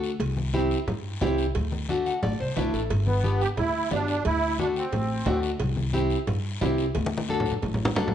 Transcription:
Already playing: D2 F#4 A4
0.04 short guiro
0.20 C2, cowbell, long guiro
0.37 high conga
0.54 C4 E4 G4, high conga, short guiro
0.71 short guiro
0.87 G2, cowbell, low conga, long guiro
1.21 C2 C4 E4 G4, high conga, low conga, low timbale, short guiro
1.38 short guiro
1.55 D2, cowbell, low conga, long guiro
1.72 high conga
1.89 A3 D4 F#4, high conga, short guiro
2.06 F#5, short guiro
2.22 A1 D5, cowbell, low conga, long guiro
2.40 C2 C5
2.56 B1 A3 D4 E4 B4, high conga, low timbale, short guiro
2.74 A1 A4, short guiro
2.90 G1, cowbell, low conga, long guiro
3.07 B3, high conga
3.24 B3 D4 G4, high conga, short guiro
3.40 G4, short guiro
3.57 D2 E4, cowbell, low conga, long guiro
3.91 G1 B3 D4 G4, high conga, low timbale, short guiro
4.08 short guiro
4.25 D2 E4, cowbell, low conga, long guiro
4.58 A3 D4 F#4, high conga, short guiro
4.76 C4, short guiro
4.92 A1, cowbell, low conga, long guiro
5.26 D2 A3 D4 F#4, high conga, low conga, low timbale, short guiro
5.43 short guiro
5.60 C2, cowbell, low conga, long guiro
5.77 high conga
5.93 C4 E4 G4, high conga, short guiro
6.11 short guiro
6.27 G2, cowbell, low conga, long guiro
6.61 C2 C4 E4 G4, high conga, low conga, low timbale, short guiro
6.78 short guiro
6.95 D2, cowbell, high conga, long guiro
7.06 high conga
7.18 high conga
7.29 D4 F#4 A4, high conga, short guiro
7.40 low conga
7.46 short guiro
7.52 low conga
7.62 A1, cowbell, low conga, long guiro
7.74 low conga
7.85 low conga
7.96 D2 D4 F#4 A4, low conga, low timbale, short guiro
8.08 low conga

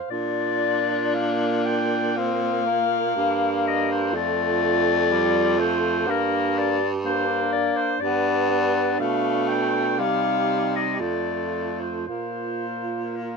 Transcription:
0.10 A#2 D4 F4 D5
1.14 A#3 F5
1.65 G5
2.16 C4 F5
2.66 A#3
3.16 G2 D4
3.67 D#5
3.92 C5
4.14 F2 A3 F4 D5
5.11 G3 F4
5.58 A3 C5
6.07 G2 A#3 D4 A#4
6.58 D5
7.05 A#3 D4 C5
7.52 D5
7.76 C5
8.00 G2 B3 D4 D5
8.50 B3
8.99 B2 A3 F5
9.48 G5
9.98 C3 G3 D#4 F5
10.75 D#5
11.00 F2 A3 F4 D5
11.80 C5
12.07 A#2 A#3 F4 C5
13.15 A#4

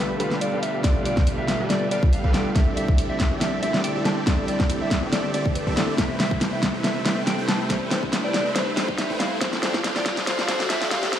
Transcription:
Already playing: G1 B2 D3 G3 A3 B3 F4 G4 A4 B4 E5, riser
0.00 B4
0.18 G1 D3 G3 A3 B3 F4 G4 A4 B4 F5, closed hi-hat
0.31 snare
0.41 D5, closed hi-hat
0.53 G1 G3 G4 A4 B4 F5
0.63 E5, closed hi-hat
0.82 G1 D3 G3 A3 B3 G4 A4 B4 D5 F5, kick, snare, closed hi-hat
0.86 F4
1.05 D5, closed hi-hat
1.17 G1 G3 G4 A4 B4 F5, kick, snare
1.27 closed hi-hat
1.38 E5
1.48 snare, closed hi-hat
1.60 G1 G3 G4 A4 B4 E5
1.70 D5, snare, closed hi-hat
1.91 G1 G3 G4 A4 B4 D5 F5, closed hi-hat
2.03 kick
2.13 F5, closed hi-hat
2.24 G1 G3 G4 A4 B4 F5, kick
2.33 D3 G3 A3 B3 F4 G5, snare, closed hi-hat
2.54 C2 D3 G3 C4 E4 G4 A4 D5 E5, kick, snare, closed hi-hat
2.77 E5, closed hi-hat
2.88 C2 C4 G4 A4 D5 E5, kick
2.98 closed hi-hat
3.10 E5
3.20 kick, snare, closed hi-hat
3.31 C2 C4 G4 A4 D5 E5
3.41 E5, snare, closed hi-hat
3.61 C2 D3 G3 A3 C4 G4 A4 D5 E5, closed hi-hat
3.65 E4
3.74 snare
3.84 G5, closed hi-hat
3.96 C2 C4 G4 A4 D5 E5
4.05 A5, snare, closed hi-hat
4.25 D3 G3 A3 C4 E4 G4 A4 D5 E5, kick, snare, closed hi-hat
4.48 D5, closed hi-hat
4.60 C2 C4 G4 A4 D5 E5, kick, snare
4.70 closed hi-hat
4.82 E5
4.91 kick, snare, closed hi-hat
5.03 C2 C4 G4 A4 D5 E5
5.13 D5, snare, closed hi-hat
5.34 C2 C4 G4 A4 D5 E5, closed hi-hat
5.46 kick
5.55 B4, closed hi-hat
5.67 C2 C4 G4 A4 D5 E5, kick
5.76 D3 G3 A3 C4 E4 A4, snare, closed hi-hat
5.96 C3 G3 A3 E4 G4 B4 C5 E5 G5, kick, snare, closed hi-hat
6.20 E5, snare, closed hi-hat
6.31 A1 A3 E4 B4 C5 G5, kick
6.41 snare, closed hi-hat
6.53 E5
6.63 kick, snare, closed hi-hat
6.74 A1 A3 E4 B4 C5 E5
6.84 E5, snare, closed hi-hat
7.04 A1 C3 G3 A3 B3 E4 B4 C5 E5 G5, snare, closed hi-hat
7.08 E4
7.27 G5, snare, closed hi-hat
7.38 A1 A3 E4 B4 C5 G5
7.48 A5, snare, closed hi-hat
7.68 C3 G3 A3 E4 B4 C5 G5, kick, snare, closed hi-hat
7.72 E4
7.91 C5, snare, closed hi-hat
8.03 A1 A3 E4 B4 C5 G5, kick
8.13 snare, closed hi-hat
8.24 D5
8.34 snare, closed hi-hat
8.46 A1 A3 E4 B4 C5 E5
8.55 C5, snare, closed hi-hat
8.77 A1 A3 E4 B4 C5 G5, snare, closed hi-hat
8.88 kick
8.98 E5, snare, closed hi-hat
9.10 A1 A3 E4 B4 C5 G5, kick
9.19 C3 G3 A3 B3 E4 F5, snare, closed hi-hat
9.39 D3 F3 A3 C4 F4 A4 C5 D5 G5, kick, snare, closed hi-hat
9.44 F4
9.53 snare
9.63 C5, snare, closed hi-hat
9.74 F3 F4 A4 D5 G5, kick, snare
9.84 snare, closed hi-hat
9.96 D5, snare
10.06 kick, snare, closed hi-hat
10.17 F1 F3 F4 A4 D5 F5, snare
10.27 C5, snare, closed hi-hat
10.39 snare
10.47 D3 F3 A3 C4 F4 A4 C5 D5 G5, snare, closed hi-hat
10.51 F4
10.60 snare
10.70 E5, snare, closed hi-hat
10.81 F3 F4 A4 D5 G5, snare
10.91 F5, snare, closed hi-hat
11.03 snare
11.11 D3 F3 A3 C4 F4 A4 D5 G5, kick, snare, closed hi-hat

